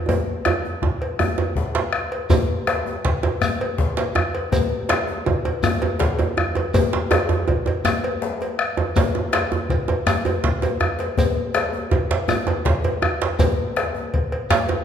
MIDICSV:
0, 0, Header, 1, 5, 480
1, 0, Start_track
1, 0, Tempo, 369914
1, 110, Time_signature, 12, 3, 24, 8
1, 19260, End_track
2, 0, Start_track
2, 0, Title_t, "Bombo"
2, 100, Note_on_c, 9, 43, 67
2, 230, Note_off_c, 9, 43, 0
2, 585, Note_on_c, 9, 37, 86
2, 715, Note_off_c, 9, 37, 0
2, 1064, Note_on_c, 9, 37, 25
2, 1064, Note_on_c, 9, 43, 83
2, 1194, Note_off_c, 9, 37, 0
2, 1194, Note_off_c, 9, 43, 0
2, 1310, Note_on_c, 9, 37, 26
2, 1440, Note_off_c, 9, 37, 0
2, 1547, Note_on_c, 9, 37, 80
2, 1676, Note_off_c, 9, 37, 0
2, 2017, Note_on_c, 9, 43, 83
2, 2147, Note_off_c, 9, 43, 0
2, 2498, Note_on_c, 9, 37, 86
2, 2628, Note_off_c, 9, 37, 0
2, 2749, Note_on_c, 9, 37, 30
2, 2879, Note_off_c, 9, 37, 0
2, 2983, Note_on_c, 9, 43, 86
2, 3112, Note_off_c, 9, 43, 0
2, 3468, Note_on_c, 9, 37, 89
2, 3598, Note_off_c, 9, 37, 0
2, 3956, Note_on_c, 9, 43, 93
2, 4086, Note_off_c, 9, 43, 0
2, 4200, Note_on_c, 9, 37, 29
2, 4329, Note_off_c, 9, 37, 0
2, 4433, Note_on_c, 9, 37, 90
2, 4563, Note_off_c, 9, 37, 0
2, 4677, Note_on_c, 9, 37, 29
2, 4807, Note_off_c, 9, 37, 0
2, 4910, Note_on_c, 9, 43, 97
2, 5039, Note_off_c, 9, 43, 0
2, 5395, Note_on_c, 9, 37, 88
2, 5525, Note_off_c, 9, 37, 0
2, 5871, Note_on_c, 9, 43, 87
2, 6001, Note_off_c, 9, 43, 0
2, 6359, Note_on_c, 9, 37, 98
2, 6489, Note_off_c, 9, 37, 0
2, 6835, Note_on_c, 9, 43, 86
2, 6965, Note_off_c, 9, 43, 0
2, 7079, Note_on_c, 9, 37, 30
2, 7209, Note_off_c, 9, 37, 0
2, 7316, Note_on_c, 9, 37, 88
2, 7445, Note_off_c, 9, 37, 0
2, 7563, Note_on_c, 9, 37, 27
2, 7693, Note_off_c, 9, 37, 0
2, 7797, Note_on_c, 9, 43, 90
2, 7927, Note_off_c, 9, 43, 0
2, 8275, Note_on_c, 9, 37, 83
2, 8405, Note_off_c, 9, 37, 0
2, 8755, Note_on_c, 9, 43, 84
2, 8885, Note_off_c, 9, 43, 0
2, 9233, Note_on_c, 9, 37, 88
2, 9363, Note_off_c, 9, 37, 0
2, 9716, Note_on_c, 9, 43, 83
2, 9846, Note_off_c, 9, 43, 0
2, 9952, Note_on_c, 9, 37, 26
2, 10082, Note_off_c, 9, 37, 0
2, 10191, Note_on_c, 9, 37, 88
2, 10321, Note_off_c, 9, 37, 0
2, 10431, Note_on_c, 9, 37, 29
2, 10561, Note_off_c, 9, 37, 0
2, 11146, Note_on_c, 9, 37, 92
2, 11275, Note_off_c, 9, 37, 0
2, 11629, Note_on_c, 9, 43, 81
2, 11759, Note_off_c, 9, 43, 0
2, 11874, Note_on_c, 9, 37, 30
2, 12003, Note_off_c, 9, 37, 0
2, 12107, Note_on_c, 9, 37, 100
2, 12237, Note_off_c, 9, 37, 0
2, 12580, Note_on_c, 9, 43, 98
2, 12710, Note_off_c, 9, 43, 0
2, 13064, Note_on_c, 9, 37, 95
2, 13194, Note_off_c, 9, 37, 0
2, 13304, Note_on_c, 9, 37, 29
2, 13434, Note_off_c, 9, 37, 0
2, 13544, Note_on_c, 9, 43, 92
2, 13674, Note_off_c, 9, 43, 0
2, 14023, Note_on_c, 9, 37, 80
2, 14153, Note_off_c, 9, 37, 0
2, 14265, Note_on_c, 9, 37, 28
2, 14395, Note_off_c, 9, 37, 0
2, 14502, Note_on_c, 9, 43, 83
2, 14631, Note_off_c, 9, 43, 0
2, 14982, Note_on_c, 9, 37, 97
2, 15112, Note_off_c, 9, 37, 0
2, 15460, Note_on_c, 9, 43, 94
2, 15590, Note_off_c, 9, 43, 0
2, 15709, Note_on_c, 9, 37, 27
2, 15839, Note_off_c, 9, 37, 0
2, 15946, Note_on_c, 9, 37, 90
2, 16076, Note_off_c, 9, 37, 0
2, 16192, Note_on_c, 9, 37, 29
2, 16322, Note_off_c, 9, 37, 0
2, 16419, Note_on_c, 9, 43, 90
2, 16549, Note_off_c, 9, 43, 0
2, 16901, Note_on_c, 9, 37, 93
2, 17031, Note_off_c, 9, 37, 0
2, 17377, Note_on_c, 9, 43, 89
2, 17507, Note_off_c, 9, 43, 0
2, 17867, Note_on_c, 9, 37, 85
2, 17997, Note_off_c, 9, 37, 0
2, 18345, Note_on_c, 9, 43, 93
2, 18474, Note_off_c, 9, 43, 0
2, 18586, Note_on_c, 9, 37, 29
2, 18716, Note_off_c, 9, 37, 0
2, 18822, Note_on_c, 9, 37, 85
2, 18951, Note_off_c, 9, 37, 0
2, 19064, Note_on_c, 9, 37, 28
2, 19194, Note_off_c, 9, 37, 0
2, 19260, End_track
3, 0, Start_track
3, 0, Title_t, "Djembe"
3, 115, Note_on_c, 9, 63, 61
3, 115, Note_on_c, 9, 64, 61
3, 116, Note_off_c, 9, 63, 0
3, 116, Note_on_c, 9, 63, 87
3, 245, Note_off_c, 9, 64, 0
3, 246, Note_off_c, 9, 63, 0
3, 586, Note_on_c, 9, 62, 57
3, 595, Note_on_c, 9, 63, 101
3, 716, Note_off_c, 9, 62, 0
3, 725, Note_off_c, 9, 63, 0
3, 836, Note_on_c, 9, 63, 46
3, 966, Note_off_c, 9, 63, 0
3, 1073, Note_on_c, 9, 63, 93
3, 1203, Note_off_c, 9, 63, 0
3, 1552, Note_on_c, 9, 63, 64
3, 1552, Note_on_c, 9, 64, 62
3, 1682, Note_off_c, 9, 63, 0
3, 1682, Note_off_c, 9, 64, 0
3, 1789, Note_on_c, 9, 63, 83
3, 1919, Note_off_c, 9, 63, 0
3, 2032, Note_on_c, 9, 62, 71
3, 2162, Note_off_c, 9, 62, 0
3, 2270, Note_on_c, 9, 62, 83
3, 2278, Note_on_c, 9, 63, 47
3, 2400, Note_off_c, 9, 62, 0
3, 2408, Note_off_c, 9, 63, 0
3, 2981, Note_on_c, 9, 63, 82
3, 2981, Note_on_c, 9, 64, 82
3, 2986, Note_off_c, 9, 63, 0
3, 2986, Note_on_c, 9, 63, 100
3, 3111, Note_off_c, 9, 64, 0
3, 3115, Note_off_c, 9, 63, 0
3, 3470, Note_on_c, 9, 62, 77
3, 3599, Note_off_c, 9, 62, 0
3, 3714, Note_on_c, 9, 63, 57
3, 3844, Note_off_c, 9, 63, 0
3, 3952, Note_on_c, 9, 62, 78
3, 4082, Note_off_c, 9, 62, 0
3, 4194, Note_on_c, 9, 63, 91
3, 4324, Note_off_c, 9, 63, 0
3, 4429, Note_on_c, 9, 63, 74
3, 4429, Note_on_c, 9, 64, 70
3, 4559, Note_off_c, 9, 63, 0
3, 4559, Note_off_c, 9, 64, 0
3, 4909, Note_on_c, 9, 62, 79
3, 5039, Note_off_c, 9, 62, 0
3, 5148, Note_on_c, 9, 63, 56
3, 5153, Note_on_c, 9, 62, 77
3, 5278, Note_off_c, 9, 63, 0
3, 5283, Note_off_c, 9, 62, 0
3, 5389, Note_on_c, 9, 63, 94
3, 5518, Note_off_c, 9, 63, 0
3, 5868, Note_on_c, 9, 63, 81
3, 5868, Note_on_c, 9, 64, 74
3, 5998, Note_off_c, 9, 63, 0
3, 5998, Note_off_c, 9, 64, 0
3, 6345, Note_on_c, 9, 62, 76
3, 6350, Note_off_c, 9, 62, 0
3, 6350, Note_on_c, 9, 62, 83
3, 6479, Note_off_c, 9, 62, 0
3, 6585, Note_on_c, 9, 63, 53
3, 6714, Note_off_c, 9, 63, 0
3, 6830, Note_on_c, 9, 63, 103
3, 6960, Note_off_c, 9, 63, 0
3, 7075, Note_on_c, 9, 63, 71
3, 7205, Note_off_c, 9, 63, 0
3, 7305, Note_on_c, 9, 63, 82
3, 7305, Note_on_c, 9, 64, 80
3, 7314, Note_off_c, 9, 63, 0
3, 7314, Note_on_c, 9, 63, 77
3, 7435, Note_off_c, 9, 64, 0
3, 7444, Note_off_c, 9, 63, 0
3, 7558, Note_on_c, 9, 63, 80
3, 7688, Note_off_c, 9, 63, 0
3, 7778, Note_on_c, 9, 62, 85
3, 7787, Note_off_c, 9, 62, 0
3, 7787, Note_on_c, 9, 62, 79
3, 7917, Note_off_c, 9, 62, 0
3, 8028, Note_on_c, 9, 63, 60
3, 8036, Note_off_c, 9, 63, 0
3, 8036, Note_on_c, 9, 63, 85
3, 8165, Note_off_c, 9, 63, 0
3, 8270, Note_on_c, 9, 63, 74
3, 8399, Note_off_c, 9, 63, 0
3, 8504, Note_on_c, 9, 63, 77
3, 8634, Note_off_c, 9, 63, 0
3, 8747, Note_on_c, 9, 63, 88
3, 8747, Note_on_c, 9, 64, 89
3, 8749, Note_off_c, 9, 63, 0
3, 8749, Note_on_c, 9, 63, 79
3, 8877, Note_off_c, 9, 64, 0
3, 8878, Note_off_c, 9, 63, 0
3, 8994, Note_on_c, 9, 62, 70
3, 9124, Note_off_c, 9, 62, 0
3, 9222, Note_on_c, 9, 62, 83
3, 9225, Note_on_c, 9, 63, 108
3, 9352, Note_off_c, 9, 62, 0
3, 9355, Note_off_c, 9, 63, 0
3, 9458, Note_on_c, 9, 63, 57
3, 9460, Note_off_c, 9, 63, 0
3, 9460, Note_on_c, 9, 63, 90
3, 9590, Note_off_c, 9, 63, 0
3, 9701, Note_on_c, 9, 63, 75
3, 9830, Note_off_c, 9, 63, 0
3, 9938, Note_on_c, 9, 63, 68
3, 10068, Note_off_c, 9, 63, 0
3, 10182, Note_on_c, 9, 63, 76
3, 10182, Note_on_c, 9, 64, 77
3, 10183, Note_on_c, 9, 62, 69
3, 10312, Note_off_c, 9, 63, 0
3, 10312, Note_off_c, 9, 64, 0
3, 10313, Note_off_c, 9, 62, 0
3, 10666, Note_on_c, 9, 62, 82
3, 10796, Note_off_c, 9, 62, 0
3, 10910, Note_on_c, 9, 63, 54
3, 11039, Note_off_c, 9, 63, 0
3, 11384, Note_on_c, 9, 63, 92
3, 11514, Note_off_c, 9, 63, 0
3, 11630, Note_on_c, 9, 63, 75
3, 11630, Note_on_c, 9, 64, 75
3, 11633, Note_on_c, 9, 62, 80
3, 11760, Note_off_c, 9, 63, 0
3, 11760, Note_off_c, 9, 64, 0
3, 11762, Note_off_c, 9, 62, 0
3, 11873, Note_on_c, 9, 63, 75
3, 12002, Note_off_c, 9, 63, 0
3, 12101, Note_on_c, 9, 62, 71
3, 12112, Note_off_c, 9, 62, 0
3, 12112, Note_on_c, 9, 62, 78
3, 12242, Note_off_c, 9, 62, 0
3, 12342, Note_on_c, 9, 63, 55
3, 12350, Note_off_c, 9, 63, 0
3, 12350, Note_on_c, 9, 63, 81
3, 12480, Note_off_c, 9, 63, 0
3, 12582, Note_on_c, 9, 62, 25
3, 12591, Note_on_c, 9, 63, 72
3, 12711, Note_off_c, 9, 62, 0
3, 12721, Note_off_c, 9, 63, 0
3, 12822, Note_on_c, 9, 63, 86
3, 12952, Note_off_c, 9, 63, 0
3, 13061, Note_on_c, 9, 63, 69
3, 13061, Note_on_c, 9, 64, 71
3, 13063, Note_on_c, 9, 62, 76
3, 13191, Note_off_c, 9, 63, 0
3, 13191, Note_off_c, 9, 64, 0
3, 13192, Note_off_c, 9, 62, 0
3, 13302, Note_on_c, 9, 63, 80
3, 13304, Note_on_c, 9, 64, 40
3, 13432, Note_off_c, 9, 63, 0
3, 13434, Note_off_c, 9, 64, 0
3, 13539, Note_on_c, 9, 64, 49
3, 13544, Note_on_c, 9, 62, 77
3, 13668, Note_off_c, 9, 64, 0
3, 13674, Note_off_c, 9, 62, 0
3, 13779, Note_on_c, 9, 64, 52
3, 13784, Note_on_c, 9, 63, 77
3, 13909, Note_off_c, 9, 64, 0
3, 13914, Note_off_c, 9, 63, 0
3, 14017, Note_on_c, 9, 62, 51
3, 14020, Note_on_c, 9, 63, 76
3, 14146, Note_off_c, 9, 62, 0
3, 14150, Note_off_c, 9, 63, 0
3, 14257, Note_on_c, 9, 62, 64
3, 14387, Note_off_c, 9, 62, 0
3, 14501, Note_on_c, 9, 63, 75
3, 14501, Note_on_c, 9, 64, 79
3, 14631, Note_off_c, 9, 63, 0
3, 14631, Note_off_c, 9, 64, 0
3, 14979, Note_on_c, 9, 62, 77
3, 15108, Note_off_c, 9, 62, 0
3, 15215, Note_on_c, 9, 63, 55
3, 15344, Note_off_c, 9, 63, 0
3, 15460, Note_on_c, 9, 63, 100
3, 15589, Note_off_c, 9, 63, 0
3, 15712, Note_on_c, 9, 62, 74
3, 15841, Note_off_c, 9, 62, 0
3, 15935, Note_on_c, 9, 63, 75
3, 15935, Note_on_c, 9, 64, 70
3, 15941, Note_off_c, 9, 63, 0
3, 15941, Note_on_c, 9, 63, 69
3, 16065, Note_off_c, 9, 64, 0
3, 16071, Note_off_c, 9, 63, 0
3, 16178, Note_on_c, 9, 63, 91
3, 16308, Note_off_c, 9, 63, 0
3, 16416, Note_on_c, 9, 62, 71
3, 16425, Note_off_c, 9, 62, 0
3, 16425, Note_on_c, 9, 62, 79
3, 16555, Note_off_c, 9, 62, 0
3, 16651, Note_on_c, 9, 63, 48
3, 16666, Note_off_c, 9, 63, 0
3, 16666, Note_on_c, 9, 63, 73
3, 16795, Note_off_c, 9, 63, 0
3, 16897, Note_on_c, 9, 63, 86
3, 17026, Note_off_c, 9, 63, 0
3, 17149, Note_on_c, 9, 62, 75
3, 17279, Note_off_c, 9, 62, 0
3, 17374, Note_on_c, 9, 63, 76
3, 17374, Note_on_c, 9, 64, 77
3, 17380, Note_off_c, 9, 63, 0
3, 17380, Note_on_c, 9, 63, 74
3, 17504, Note_off_c, 9, 64, 0
3, 17509, Note_off_c, 9, 63, 0
3, 17861, Note_on_c, 9, 62, 72
3, 17990, Note_off_c, 9, 62, 0
3, 18097, Note_on_c, 9, 63, 55
3, 18227, Note_off_c, 9, 63, 0
3, 18818, Note_on_c, 9, 63, 66
3, 18818, Note_on_c, 9, 64, 67
3, 18822, Note_on_c, 9, 62, 100
3, 18948, Note_off_c, 9, 63, 0
3, 18948, Note_off_c, 9, 64, 0
3, 18952, Note_off_c, 9, 62, 0
3, 19063, Note_on_c, 9, 63, 81
3, 19193, Note_off_c, 9, 63, 0
3, 19260, End_track
4, 0, Start_track
4, 0, Title_t, "Shekere"
4, 2988, Note_on_c, 9, 82, 65
4, 3117, Note_off_c, 9, 82, 0
4, 4442, Note_on_c, 9, 82, 57
4, 4571, Note_off_c, 9, 82, 0
4, 5881, Note_on_c, 9, 82, 64
4, 6011, Note_off_c, 9, 82, 0
4, 7309, Note_on_c, 9, 82, 61
4, 7439, Note_off_c, 9, 82, 0
4, 8752, Note_on_c, 9, 82, 67
4, 8882, Note_off_c, 9, 82, 0
4, 10190, Note_on_c, 9, 82, 57
4, 10319, Note_off_c, 9, 82, 0
4, 11622, Note_on_c, 9, 82, 58
4, 11751, Note_off_c, 9, 82, 0
4, 12591, Note_on_c, 9, 82, 18
4, 12721, Note_off_c, 9, 82, 0
4, 13066, Note_on_c, 9, 82, 52
4, 13196, Note_off_c, 9, 82, 0
4, 13794, Note_on_c, 9, 82, 16
4, 13924, Note_off_c, 9, 82, 0
4, 14522, Note_on_c, 9, 82, 55
4, 14652, Note_off_c, 9, 82, 0
4, 15947, Note_on_c, 9, 82, 55
4, 16077, Note_off_c, 9, 82, 0
4, 17381, Note_on_c, 9, 82, 61
4, 17511, Note_off_c, 9, 82, 0
4, 18821, Note_on_c, 9, 82, 58
4, 18951, Note_off_c, 9, 82, 0
4, 19260, End_track
5, 0, Start_track
5, 0, Title_t, "Drums"
5, 114, Note_on_c, 9, 56, 55
5, 244, Note_off_c, 9, 56, 0
5, 587, Note_on_c, 9, 56, 43
5, 716, Note_off_c, 9, 56, 0
5, 1320, Note_on_c, 9, 56, 40
5, 1449, Note_off_c, 9, 56, 0
5, 1795, Note_on_c, 9, 56, 39
5, 1925, Note_off_c, 9, 56, 0
5, 2272, Note_on_c, 9, 56, 41
5, 2402, Note_off_c, 9, 56, 0
5, 2750, Note_on_c, 9, 56, 44
5, 2880, Note_off_c, 9, 56, 0
5, 2993, Note_on_c, 9, 56, 58
5, 3123, Note_off_c, 9, 56, 0
5, 3470, Note_on_c, 9, 56, 51
5, 3600, Note_off_c, 9, 56, 0
5, 3963, Note_on_c, 9, 56, 48
5, 4093, Note_off_c, 9, 56, 0
5, 4195, Note_on_c, 9, 56, 51
5, 4324, Note_off_c, 9, 56, 0
5, 4687, Note_on_c, 9, 56, 53
5, 4817, Note_off_c, 9, 56, 0
5, 5168, Note_on_c, 9, 56, 57
5, 5298, Note_off_c, 9, 56, 0
5, 5639, Note_on_c, 9, 56, 50
5, 5769, Note_off_c, 9, 56, 0
5, 5874, Note_on_c, 9, 56, 62
5, 6003, Note_off_c, 9, 56, 0
5, 6351, Note_on_c, 9, 56, 51
5, 6481, Note_off_c, 9, 56, 0
5, 6831, Note_on_c, 9, 56, 47
5, 6961, Note_off_c, 9, 56, 0
5, 7076, Note_on_c, 9, 56, 51
5, 7206, Note_off_c, 9, 56, 0
5, 7550, Note_on_c, 9, 56, 50
5, 7679, Note_off_c, 9, 56, 0
5, 8027, Note_on_c, 9, 56, 49
5, 8157, Note_off_c, 9, 56, 0
5, 8519, Note_on_c, 9, 56, 47
5, 8649, Note_off_c, 9, 56, 0
5, 8752, Note_on_c, 9, 56, 65
5, 8882, Note_off_c, 9, 56, 0
5, 9236, Note_on_c, 9, 56, 52
5, 9366, Note_off_c, 9, 56, 0
5, 9708, Note_on_c, 9, 56, 47
5, 9838, Note_off_c, 9, 56, 0
5, 9958, Note_on_c, 9, 56, 45
5, 10088, Note_off_c, 9, 56, 0
5, 10437, Note_on_c, 9, 56, 53
5, 10566, Note_off_c, 9, 56, 0
5, 10924, Note_on_c, 9, 56, 48
5, 11053, Note_off_c, 9, 56, 0
5, 11385, Note_on_c, 9, 56, 41
5, 11515, Note_off_c, 9, 56, 0
5, 11636, Note_on_c, 9, 56, 58
5, 11765, Note_off_c, 9, 56, 0
5, 12112, Note_on_c, 9, 56, 46
5, 12242, Note_off_c, 9, 56, 0
5, 12592, Note_on_c, 9, 56, 46
5, 12721, Note_off_c, 9, 56, 0
5, 12835, Note_on_c, 9, 56, 48
5, 12965, Note_off_c, 9, 56, 0
5, 13316, Note_on_c, 9, 56, 52
5, 13446, Note_off_c, 9, 56, 0
5, 13797, Note_on_c, 9, 56, 55
5, 13926, Note_off_c, 9, 56, 0
5, 14275, Note_on_c, 9, 56, 50
5, 14405, Note_off_c, 9, 56, 0
5, 14515, Note_on_c, 9, 56, 64
5, 14645, Note_off_c, 9, 56, 0
5, 14993, Note_on_c, 9, 56, 52
5, 15123, Note_off_c, 9, 56, 0
5, 15476, Note_on_c, 9, 56, 47
5, 15606, Note_off_c, 9, 56, 0
5, 15713, Note_on_c, 9, 56, 45
5, 15843, Note_off_c, 9, 56, 0
5, 16190, Note_on_c, 9, 56, 51
5, 16320, Note_off_c, 9, 56, 0
5, 16669, Note_on_c, 9, 56, 52
5, 16799, Note_off_c, 9, 56, 0
5, 17153, Note_on_c, 9, 56, 46
5, 17282, Note_off_c, 9, 56, 0
5, 17387, Note_on_c, 9, 56, 63
5, 17516, Note_off_c, 9, 56, 0
5, 17868, Note_on_c, 9, 56, 49
5, 17998, Note_off_c, 9, 56, 0
5, 18344, Note_on_c, 9, 56, 47
5, 18474, Note_off_c, 9, 56, 0
5, 18586, Note_on_c, 9, 56, 46
5, 18716, Note_off_c, 9, 56, 0
5, 19057, Note_on_c, 9, 56, 50
5, 19187, Note_off_c, 9, 56, 0
5, 19260, End_track
0, 0, End_of_file